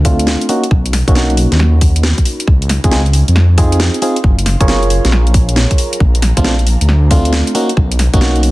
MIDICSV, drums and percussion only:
0, 0, Header, 1, 2, 480
1, 0, Start_track
1, 0, Tempo, 441176
1, 772, Time_signature, 4, 2, 24, 8
1, 9262, End_track
2, 0, Start_track
2, 0, Title_t, "Drums"
2, 53, Note_on_c, 9, 36, 99
2, 53, Note_on_c, 9, 46, 103
2, 162, Note_off_c, 9, 36, 0
2, 162, Note_off_c, 9, 46, 0
2, 212, Note_on_c, 9, 42, 65
2, 292, Note_on_c, 9, 38, 106
2, 320, Note_off_c, 9, 42, 0
2, 401, Note_off_c, 9, 38, 0
2, 451, Note_on_c, 9, 42, 47
2, 533, Note_on_c, 9, 46, 88
2, 560, Note_off_c, 9, 42, 0
2, 641, Note_off_c, 9, 46, 0
2, 692, Note_on_c, 9, 42, 62
2, 773, Note_on_c, 9, 36, 114
2, 800, Note_off_c, 9, 42, 0
2, 881, Note_off_c, 9, 36, 0
2, 932, Note_on_c, 9, 42, 49
2, 1015, Note_on_c, 9, 40, 51
2, 1015, Note_on_c, 9, 46, 101
2, 1040, Note_off_c, 9, 42, 0
2, 1123, Note_off_c, 9, 40, 0
2, 1123, Note_off_c, 9, 46, 0
2, 1171, Note_on_c, 9, 36, 108
2, 1173, Note_on_c, 9, 42, 60
2, 1255, Note_on_c, 9, 38, 117
2, 1280, Note_off_c, 9, 36, 0
2, 1282, Note_off_c, 9, 42, 0
2, 1363, Note_off_c, 9, 38, 0
2, 1413, Note_on_c, 9, 42, 35
2, 1494, Note_on_c, 9, 46, 92
2, 1522, Note_off_c, 9, 42, 0
2, 1603, Note_off_c, 9, 46, 0
2, 1652, Note_on_c, 9, 38, 58
2, 1652, Note_on_c, 9, 42, 55
2, 1735, Note_on_c, 9, 40, 68
2, 1761, Note_off_c, 9, 38, 0
2, 1761, Note_off_c, 9, 42, 0
2, 1843, Note_off_c, 9, 40, 0
2, 1972, Note_on_c, 9, 46, 101
2, 1973, Note_on_c, 9, 36, 105
2, 2081, Note_off_c, 9, 46, 0
2, 2082, Note_off_c, 9, 36, 0
2, 2132, Note_on_c, 9, 42, 57
2, 2213, Note_on_c, 9, 38, 117
2, 2241, Note_off_c, 9, 42, 0
2, 2322, Note_off_c, 9, 38, 0
2, 2371, Note_on_c, 9, 42, 44
2, 2372, Note_on_c, 9, 36, 61
2, 2453, Note_on_c, 9, 46, 83
2, 2480, Note_off_c, 9, 36, 0
2, 2480, Note_off_c, 9, 42, 0
2, 2562, Note_off_c, 9, 46, 0
2, 2611, Note_on_c, 9, 42, 59
2, 2693, Note_on_c, 9, 36, 120
2, 2720, Note_off_c, 9, 42, 0
2, 2802, Note_off_c, 9, 36, 0
2, 2851, Note_on_c, 9, 42, 48
2, 2932, Note_on_c, 9, 40, 52
2, 2932, Note_on_c, 9, 46, 98
2, 2959, Note_off_c, 9, 42, 0
2, 3040, Note_off_c, 9, 40, 0
2, 3040, Note_off_c, 9, 46, 0
2, 3090, Note_on_c, 9, 42, 59
2, 3092, Note_on_c, 9, 36, 107
2, 3171, Note_on_c, 9, 38, 122
2, 3199, Note_off_c, 9, 42, 0
2, 3200, Note_off_c, 9, 36, 0
2, 3280, Note_off_c, 9, 38, 0
2, 3330, Note_on_c, 9, 42, 35
2, 3410, Note_on_c, 9, 46, 88
2, 3439, Note_off_c, 9, 42, 0
2, 3519, Note_off_c, 9, 46, 0
2, 3570, Note_on_c, 9, 42, 58
2, 3651, Note_on_c, 9, 40, 67
2, 3678, Note_off_c, 9, 42, 0
2, 3760, Note_off_c, 9, 40, 0
2, 3891, Note_on_c, 9, 46, 97
2, 3893, Note_on_c, 9, 36, 110
2, 4000, Note_off_c, 9, 46, 0
2, 4001, Note_off_c, 9, 36, 0
2, 4051, Note_on_c, 9, 42, 57
2, 4132, Note_on_c, 9, 38, 116
2, 4160, Note_off_c, 9, 42, 0
2, 4240, Note_off_c, 9, 38, 0
2, 4291, Note_on_c, 9, 42, 45
2, 4373, Note_on_c, 9, 46, 82
2, 4399, Note_off_c, 9, 42, 0
2, 4482, Note_off_c, 9, 46, 0
2, 4531, Note_on_c, 9, 42, 60
2, 4612, Note_on_c, 9, 36, 114
2, 4640, Note_off_c, 9, 42, 0
2, 4721, Note_off_c, 9, 36, 0
2, 4772, Note_on_c, 9, 42, 50
2, 4852, Note_on_c, 9, 40, 46
2, 4852, Note_on_c, 9, 46, 94
2, 4881, Note_off_c, 9, 42, 0
2, 4961, Note_off_c, 9, 40, 0
2, 4961, Note_off_c, 9, 46, 0
2, 5011, Note_on_c, 9, 36, 102
2, 5011, Note_on_c, 9, 42, 61
2, 5093, Note_on_c, 9, 38, 119
2, 5120, Note_off_c, 9, 36, 0
2, 5120, Note_off_c, 9, 42, 0
2, 5202, Note_off_c, 9, 38, 0
2, 5251, Note_on_c, 9, 42, 36
2, 5334, Note_on_c, 9, 46, 85
2, 5360, Note_off_c, 9, 42, 0
2, 5442, Note_off_c, 9, 46, 0
2, 5491, Note_on_c, 9, 38, 59
2, 5491, Note_on_c, 9, 42, 58
2, 5573, Note_on_c, 9, 40, 62
2, 5600, Note_off_c, 9, 38, 0
2, 5600, Note_off_c, 9, 42, 0
2, 5682, Note_off_c, 9, 40, 0
2, 5731, Note_on_c, 9, 42, 34
2, 5812, Note_on_c, 9, 36, 110
2, 5812, Note_on_c, 9, 46, 94
2, 5840, Note_off_c, 9, 42, 0
2, 5921, Note_off_c, 9, 36, 0
2, 5921, Note_off_c, 9, 46, 0
2, 5970, Note_on_c, 9, 42, 61
2, 6050, Note_on_c, 9, 38, 111
2, 6078, Note_off_c, 9, 42, 0
2, 6159, Note_off_c, 9, 38, 0
2, 6210, Note_on_c, 9, 42, 47
2, 6211, Note_on_c, 9, 36, 64
2, 6291, Note_on_c, 9, 46, 80
2, 6319, Note_off_c, 9, 42, 0
2, 6320, Note_off_c, 9, 36, 0
2, 6400, Note_off_c, 9, 46, 0
2, 6450, Note_on_c, 9, 42, 60
2, 6532, Note_on_c, 9, 36, 114
2, 6559, Note_off_c, 9, 42, 0
2, 6641, Note_off_c, 9, 36, 0
2, 6690, Note_on_c, 9, 42, 51
2, 6771, Note_on_c, 9, 40, 47
2, 6771, Note_on_c, 9, 46, 97
2, 6799, Note_off_c, 9, 42, 0
2, 6880, Note_off_c, 9, 40, 0
2, 6880, Note_off_c, 9, 46, 0
2, 6930, Note_on_c, 9, 42, 62
2, 6931, Note_on_c, 9, 36, 96
2, 7011, Note_on_c, 9, 38, 119
2, 7039, Note_off_c, 9, 42, 0
2, 7040, Note_off_c, 9, 36, 0
2, 7120, Note_off_c, 9, 38, 0
2, 7171, Note_on_c, 9, 42, 36
2, 7253, Note_on_c, 9, 46, 83
2, 7280, Note_off_c, 9, 42, 0
2, 7361, Note_off_c, 9, 46, 0
2, 7411, Note_on_c, 9, 42, 61
2, 7493, Note_on_c, 9, 40, 64
2, 7520, Note_off_c, 9, 42, 0
2, 7601, Note_off_c, 9, 40, 0
2, 7732, Note_on_c, 9, 46, 95
2, 7733, Note_on_c, 9, 36, 101
2, 7841, Note_off_c, 9, 46, 0
2, 7842, Note_off_c, 9, 36, 0
2, 7890, Note_on_c, 9, 42, 66
2, 7971, Note_on_c, 9, 38, 111
2, 7999, Note_off_c, 9, 42, 0
2, 8079, Note_off_c, 9, 38, 0
2, 8130, Note_on_c, 9, 42, 47
2, 8213, Note_on_c, 9, 46, 81
2, 8239, Note_off_c, 9, 42, 0
2, 8322, Note_off_c, 9, 46, 0
2, 8372, Note_on_c, 9, 42, 60
2, 8454, Note_on_c, 9, 36, 105
2, 8481, Note_off_c, 9, 42, 0
2, 8562, Note_off_c, 9, 36, 0
2, 8612, Note_on_c, 9, 42, 55
2, 8695, Note_on_c, 9, 40, 48
2, 8695, Note_on_c, 9, 46, 98
2, 8721, Note_off_c, 9, 42, 0
2, 8803, Note_off_c, 9, 40, 0
2, 8803, Note_off_c, 9, 46, 0
2, 8852, Note_on_c, 9, 36, 95
2, 8852, Note_on_c, 9, 42, 64
2, 8933, Note_on_c, 9, 38, 114
2, 8960, Note_off_c, 9, 42, 0
2, 8961, Note_off_c, 9, 36, 0
2, 9042, Note_off_c, 9, 38, 0
2, 9091, Note_on_c, 9, 42, 36
2, 9172, Note_on_c, 9, 46, 89
2, 9200, Note_off_c, 9, 42, 0
2, 9262, Note_off_c, 9, 46, 0
2, 9262, End_track
0, 0, End_of_file